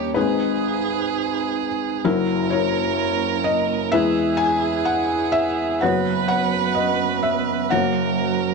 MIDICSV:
0, 0, Header, 1, 4, 480
1, 0, Start_track
1, 0, Tempo, 943396
1, 1044, Time_signature, 4, 2, 24, 8
1, 4346, End_track
2, 0, Start_track
2, 0, Title_t, "Violin"
2, 0, Program_c, 0, 40
2, 0, Note_on_c, 0, 67, 94
2, 77, Note_off_c, 0, 67, 0
2, 80, Note_on_c, 0, 68, 94
2, 1049, Note_on_c, 0, 70, 106
2, 1057, Note_off_c, 0, 68, 0
2, 2004, Note_off_c, 0, 70, 0
2, 2007, Note_on_c, 0, 68, 100
2, 2942, Note_off_c, 0, 68, 0
2, 2962, Note_on_c, 0, 71, 119
2, 3922, Note_on_c, 0, 70, 92
2, 3930, Note_off_c, 0, 71, 0
2, 4346, Note_off_c, 0, 70, 0
2, 4346, End_track
3, 0, Start_track
3, 0, Title_t, "Felt piano"
3, 0, Program_c, 1, 0
3, 0, Control_c, 1, 64, 127
3, 0, Note_on_c, 1, 39, 55
3, 0, Note_on_c, 1, 51, 62
3, 0, Note_on_c, 1, 55, 71
3, 0, Note_on_c, 1, 63, 64
3, 0, Note_on_c, 1, 70, 51
3, 0, Note_on_c, 1, 73, 85
3, 0, Note_on_c, 1, 75, 78
3, 0, Note_on_c, 1, 79, 97
3, 62, Note_off_c, 1, 39, 0
3, 62, Note_off_c, 1, 51, 0
3, 67, Note_off_c, 1, 70, 0
3, 73, Note_on_c, 1, 71, 79
3, 81, Note_off_c, 1, 63, 0
3, 81, Note_on_c, 1, 32, 66
3, 81, Note_on_c, 1, 44, 59
3, 81, Note_on_c, 1, 63, 62
3, 82, Note_on_c, 1, 56, 74
3, 84, Note_on_c, 1, 68, 60
3, 86, Note_off_c, 1, 73, 0
3, 91, Note_off_c, 1, 75, 0
3, 91, Note_off_c, 1, 79, 0
3, 91, Control_c, 1, 64, 0
3, 92, Note_off_c, 1, 55, 0
3, 183, Control_c, 1, 64, 127
3, 538, Note_off_c, 1, 71, 0
3, 853, Note_off_c, 1, 56, 0
3, 853, Note_off_c, 1, 63, 0
3, 1021, Note_off_c, 1, 32, 0
3, 1021, Note_off_c, 1, 44, 0
3, 1023, Note_off_c, 1, 68, 0
3, 1040, Note_on_c, 1, 54, 82
3, 1041, Note_on_c, 1, 30, 69
3, 1041, Note_on_c, 1, 42, 71
3, 1042, Note_on_c, 1, 64, 83
3, 1042, Note_on_c, 1, 70, 92
3, 1051, Control_c, 1, 64, 0
3, 1132, Control_c, 1, 64, 127
3, 1274, Note_on_c, 1, 73, 89
3, 1277, Note_off_c, 1, 64, 0
3, 1278, Note_off_c, 1, 70, 0
3, 1284, Note_on_c, 1, 64, 64
3, 1286, Note_on_c, 1, 70, 72
3, 1751, Note_on_c, 1, 75, 96
3, 1772, Note_off_c, 1, 73, 0
3, 1811, Note_off_c, 1, 54, 0
3, 1979, Note_off_c, 1, 75, 0
3, 1980, Note_off_c, 1, 30, 0
3, 1980, Note_off_c, 1, 42, 0
3, 1981, Note_off_c, 1, 64, 0
3, 1982, Note_off_c, 1, 70, 0
3, 1993, Note_on_c, 1, 76, 105
3, 1998, Note_on_c, 1, 52, 62
3, 1998, Note_on_c, 1, 56, 73
3, 1999, Note_on_c, 1, 64, 58
3, 2000, Note_on_c, 1, 71, 80
3, 2001, Note_on_c, 1, 40, 63
3, 2008, Control_c, 1, 64, 0
3, 2012, Note_on_c, 1, 68, 76
3, 2106, Control_c, 1, 64, 127
3, 2223, Note_on_c, 1, 80, 106
3, 2243, Note_off_c, 1, 76, 0
3, 2469, Note_on_c, 1, 78, 96
3, 2479, Note_off_c, 1, 80, 0
3, 2707, Note_on_c, 1, 76, 99
3, 2721, Note_off_c, 1, 78, 0
3, 2769, Note_off_c, 1, 56, 0
3, 2770, Note_off_c, 1, 64, 0
3, 2770, Note_off_c, 1, 71, 0
3, 2937, Note_off_c, 1, 52, 0
3, 2939, Note_off_c, 1, 40, 0
3, 2944, Note_off_c, 1, 68, 0
3, 2955, Note_on_c, 1, 78, 72
3, 2960, Note_off_c, 1, 76, 0
3, 2964, Note_on_c, 1, 59, 76
3, 2965, Note_on_c, 1, 30, 55
3, 2966, Control_c, 1, 64, 0
3, 2966, Note_on_c, 1, 42, 55
3, 2967, Note_on_c, 1, 66, 65
3, 2968, Note_on_c, 1, 73, 79
3, 2979, Note_on_c, 1, 71, 58
3, 3063, Control_c, 1, 64, 127
3, 3188, Note_off_c, 1, 78, 0
3, 3196, Note_on_c, 1, 78, 99
3, 3432, Note_on_c, 1, 75, 82
3, 3445, Note_off_c, 1, 78, 0
3, 3659, Note_off_c, 1, 75, 0
3, 3677, Note_on_c, 1, 76, 79
3, 3734, Note_off_c, 1, 59, 0
3, 3735, Note_off_c, 1, 66, 0
3, 3736, Note_off_c, 1, 73, 0
3, 3902, Note_off_c, 1, 76, 0
3, 3903, Note_off_c, 1, 30, 0
3, 3904, Note_off_c, 1, 42, 0
3, 3910, Note_off_c, 1, 71, 0
3, 3919, Note_on_c, 1, 78, 85
3, 3926, Control_c, 1, 64, 0
3, 3926, Note_on_c, 1, 30, 56
3, 3926, Note_on_c, 1, 42, 60
3, 3926, Note_on_c, 1, 58, 62
3, 3927, Note_on_c, 1, 66, 61
3, 3927, Note_on_c, 1, 73, 71
3, 3935, Note_on_c, 1, 70, 64
3, 4016, Control_c, 1, 64, 127
3, 4346, Note_off_c, 1, 30, 0
3, 4346, Note_off_c, 1, 42, 0
3, 4346, Note_off_c, 1, 58, 0
3, 4346, Note_off_c, 1, 66, 0
3, 4346, Note_off_c, 1, 70, 0
3, 4346, Note_off_c, 1, 73, 0
3, 4346, Note_off_c, 1, 78, 0
3, 4346, End_track
4, 0, Start_track
4, 0, Title_t, "Vibraphone"
4, 0, Program_c, 2, 11
4, 0, Note_on_c, 2, 58, 59
4, 0, Note_on_c, 2, 61, 58
4, 85, Note_on_c, 2, 63, 83
4, 132, Note_off_c, 2, 61, 0
4, 133, Note_off_c, 2, 58, 0
4, 326, Note_off_c, 2, 63, 0
4, 326, Note_on_c, 2, 63, 70
4, 1042, Note_on_c, 2, 64, 72
4, 1092, Note_off_c, 2, 63, 0
4, 1283, Note_on_c, 2, 58, 58
4, 1520, Note_on_c, 2, 61, 64
4, 1754, Note_off_c, 2, 58, 0
4, 1760, Note_on_c, 2, 58, 63
4, 1994, Note_off_c, 2, 64, 0
4, 2000, Note_on_c, 2, 64, 81
4, 2047, Note_off_c, 2, 61, 0
4, 2048, Note_off_c, 2, 58, 0
4, 2241, Note_on_c, 2, 68, 66
4, 2959, Note_off_c, 2, 64, 0
4, 2962, Note_on_c, 2, 54, 78
4, 3007, Note_off_c, 2, 68, 0
4, 3199, Note_on_c, 2, 59, 59
4, 3442, Note_on_c, 2, 61, 62
4, 3676, Note_off_c, 2, 59, 0
4, 3682, Note_on_c, 2, 59, 62
4, 3917, Note_off_c, 2, 54, 0
4, 3924, Note_on_c, 2, 54, 87
4, 3970, Note_off_c, 2, 59, 0
4, 3970, Note_off_c, 2, 61, 0
4, 4162, Note_on_c, 2, 66, 62
4, 4346, Note_off_c, 2, 54, 0
4, 4346, Note_off_c, 2, 66, 0
4, 4346, End_track
0, 0, End_of_file